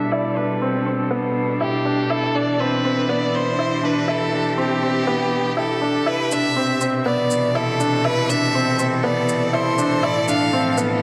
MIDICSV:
0, 0, Header, 1, 5, 480
1, 0, Start_track
1, 0, Tempo, 495868
1, 111, Time_signature, 4, 2, 24, 8
1, 10667, End_track
2, 0, Start_track
2, 0, Title_t, "Violin"
2, 0, Program_c, 0, 40
2, 0, Note_on_c, 0, 76, 88
2, 114, Note_on_c, 0, 74, 89
2, 128, Note_off_c, 0, 76, 0
2, 356, Note_on_c, 0, 71, 75
2, 370, Note_off_c, 0, 74, 0
2, 834, Note_off_c, 0, 71, 0
2, 1559, Note_on_c, 0, 67, 83
2, 2036, Note_on_c, 0, 69, 95
2, 2050, Note_off_c, 0, 67, 0
2, 2277, Note_on_c, 0, 74, 91
2, 2292, Note_off_c, 0, 69, 0
2, 2520, Note_on_c, 0, 71, 93
2, 2535, Note_off_c, 0, 74, 0
2, 2997, Note_on_c, 0, 74, 89
2, 3011, Note_off_c, 0, 71, 0
2, 3243, Note_on_c, 0, 72, 96
2, 3258, Note_off_c, 0, 74, 0
2, 3726, Note_on_c, 0, 71, 82
2, 3740, Note_off_c, 0, 72, 0
2, 3964, Note_on_c, 0, 69, 91
2, 3978, Note_off_c, 0, 71, 0
2, 4445, Note_on_c, 0, 67, 75
2, 4459, Note_off_c, 0, 69, 0
2, 5388, Note_off_c, 0, 67, 0
2, 5394, Note_on_c, 0, 69, 77
2, 5878, Note_on_c, 0, 71, 89
2, 5893, Note_off_c, 0, 69, 0
2, 6119, Note_on_c, 0, 76, 91
2, 6134, Note_off_c, 0, 71, 0
2, 6595, Note_off_c, 0, 76, 0
2, 6830, Note_on_c, 0, 74, 82
2, 7310, Note_on_c, 0, 69, 87
2, 7325, Note_off_c, 0, 74, 0
2, 7787, Note_on_c, 0, 71, 101
2, 7802, Note_off_c, 0, 69, 0
2, 8029, Note_on_c, 0, 76, 96
2, 8044, Note_off_c, 0, 71, 0
2, 8510, Note_off_c, 0, 76, 0
2, 8750, Note_on_c, 0, 74, 84
2, 9237, Note_on_c, 0, 72, 84
2, 9252, Note_off_c, 0, 74, 0
2, 9719, Note_on_c, 0, 74, 101
2, 9733, Note_off_c, 0, 72, 0
2, 9950, Note_off_c, 0, 74, 0
2, 9956, Note_on_c, 0, 77, 100
2, 10400, Note_off_c, 0, 77, 0
2, 10667, End_track
3, 0, Start_track
3, 0, Title_t, "Grand piano"
3, 0, Program_c, 1, 0
3, 115, Note_on_c, 1, 64, 79
3, 312, Note_off_c, 1, 64, 0
3, 356, Note_on_c, 1, 62, 65
3, 552, Note_off_c, 1, 62, 0
3, 596, Note_on_c, 1, 60, 69
3, 792, Note_off_c, 1, 60, 0
3, 835, Note_on_c, 1, 60, 64
3, 1032, Note_off_c, 1, 60, 0
3, 1070, Note_on_c, 1, 59, 72
3, 1467, Note_off_c, 1, 59, 0
3, 1554, Note_on_c, 1, 64, 72
3, 1751, Note_off_c, 1, 64, 0
3, 1793, Note_on_c, 1, 62, 70
3, 1990, Note_off_c, 1, 62, 0
3, 2034, Note_on_c, 1, 64, 78
3, 2231, Note_off_c, 1, 64, 0
3, 2274, Note_on_c, 1, 62, 67
3, 2471, Note_off_c, 1, 62, 0
3, 2518, Note_on_c, 1, 60, 73
3, 2713, Note_off_c, 1, 60, 0
3, 2755, Note_on_c, 1, 60, 70
3, 2951, Note_off_c, 1, 60, 0
3, 2992, Note_on_c, 1, 59, 73
3, 3388, Note_off_c, 1, 59, 0
3, 3472, Note_on_c, 1, 64, 76
3, 3669, Note_off_c, 1, 64, 0
3, 3711, Note_on_c, 1, 62, 72
3, 3909, Note_off_c, 1, 62, 0
3, 3947, Note_on_c, 1, 64, 77
3, 4147, Note_off_c, 1, 64, 0
3, 4192, Note_on_c, 1, 62, 63
3, 4390, Note_off_c, 1, 62, 0
3, 4429, Note_on_c, 1, 60, 78
3, 4628, Note_off_c, 1, 60, 0
3, 4671, Note_on_c, 1, 60, 67
3, 4869, Note_off_c, 1, 60, 0
3, 4910, Note_on_c, 1, 59, 80
3, 5306, Note_off_c, 1, 59, 0
3, 5389, Note_on_c, 1, 64, 70
3, 5588, Note_off_c, 1, 64, 0
3, 5629, Note_on_c, 1, 62, 73
3, 5828, Note_off_c, 1, 62, 0
3, 5868, Note_on_c, 1, 64, 84
3, 6067, Note_off_c, 1, 64, 0
3, 6115, Note_on_c, 1, 62, 63
3, 6312, Note_off_c, 1, 62, 0
3, 6352, Note_on_c, 1, 60, 76
3, 6550, Note_off_c, 1, 60, 0
3, 6591, Note_on_c, 1, 60, 75
3, 6789, Note_off_c, 1, 60, 0
3, 6832, Note_on_c, 1, 59, 82
3, 7227, Note_off_c, 1, 59, 0
3, 7307, Note_on_c, 1, 64, 73
3, 7507, Note_off_c, 1, 64, 0
3, 7551, Note_on_c, 1, 62, 71
3, 7749, Note_off_c, 1, 62, 0
3, 7790, Note_on_c, 1, 64, 86
3, 7988, Note_off_c, 1, 64, 0
3, 8032, Note_on_c, 1, 62, 70
3, 8230, Note_off_c, 1, 62, 0
3, 8272, Note_on_c, 1, 60, 80
3, 8470, Note_off_c, 1, 60, 0
3, 8508, Note_on_c, 1, 60, 72
3, 8708, Note_off_c, 1, 60, 0
3, 8747, Note_on_c, 1, 59, 80
3, 9144, Note_off_c, 1, 59, 0
3, 9225, Note_on_c, 1, 64, 81
3, 9426, Note_off_c, 1, 64, 0
3, 9470, Note_on_c, 1, 62, 76
3, 9669, Note_off_c, 1, 62, 0
3, 9708, Note_on_c, 1, 64, 89
3, 9908, Note_off_c, 1, 64, 0
3, 9951, Note_on_c, 1, 62, 74
3, 10149, Note_off_c, 1, 62, 0
3, 10193, Note_on_c, 1, 60, 84
3, 10390, Note_off_c, 1, 60, 0
3, 10431, Note_on_c, 1, 59, 75
3, 10629, Note_off_c, 1, 59, 0
3, 10667, End_track
4, 0, Start_track
4, 0, Title_t, "String quartet"
4, 0, Program_c, 2, 48
4, 0, Note_on_c, 2, 47, 63
4, 0, Note_on_c, 2, 55, 58
4, 0, Note_on_c, 2, 62, 58
4, 0, Note_on_c, 2, 69, 55
4, 2030, Note_off_c, 2, 55, 0
4, 2320, Note_on_c, 2, 52, 72
4, 3295, Note_off_c, 2, 69, 0
4, 3549, Note_on_c, 2, 67, 61
4, 5867, Note_on_c, 2, 48, 63
4, 5871, Note_off_c, 2, 47, 0
4, 5871, Note_off_c, 2, 52, 0
4, 6148, Note_on_c, 2, 47, 70
4, 6943, Note_on_c, 2, 52, 62
4, 6947, Note_off_c, 2, 67, 0
4, 7146, Note_on_c, 2, 69, 64
4, 7407, Note_off_c, 2, 62, 0
4, 9710, Note_off_c, 2, 48, 0
4, 9719, Note_on_c, 2, 45, 78
4, 9920, Note_on_c, 2, 62, 67
4, 10096, Note_on_c, 2, 53, 66
4, 10571, Note_off_c, 2, 47, 0
4, 10667, Note_off_c, 2, 45, 0
4, 10667, Note_off_c, 2, 52, 0
4, 10667, Note_off_c, 2, 53, 0
4, 10667, Note_off_c, 2, 62, 0
4, 10667, Note_off_c, 2, 69, 0
4, 10667, End_track
5, 0, Start_track
5, 0, Title_t, "Drums"
5, 6112, Note_on_c, 9, 82, 53
5, 6209, Note_off_c, 9, 82, 0
5, 6592, Note_on_c, 9, 82, 55
5, 6689, Note_off_c, 9, 82, 0
5, 7073, Note_on_c, 9, 82, 54
5, 7170, Note_off_c, 9, 82, 0
5, 7552, Note_on_c, 9, 82, 51
5, 7649, Note_off_c, 9, 82, 0
5, 8033, Note_on_c, 9, 82, 59
5, 8130, Note_off_c, 9, 82, 0
5, 8510, Note_on_c, 9, 82, 59
5, 8607, Note_off_c, 9, 82, 0
5, 8990, Note_on_c, 9, 82, 58
5, 9087, Note_off_c, 9, 82, 0
5, 9471, Note_on_c, 9, 82, 55
5, 9568, Note_off_c, 9, 82, 0
5, 9953, Note_on_c, 9, 82, 60
5, 10050, Note_off_c, 9, 82, 0
5, 10432, Note_on_c, 9, 82, 61
5, 10529, Note_off_c, 9, 82, 0
5, 10667, End_track
0, 0, End_of_file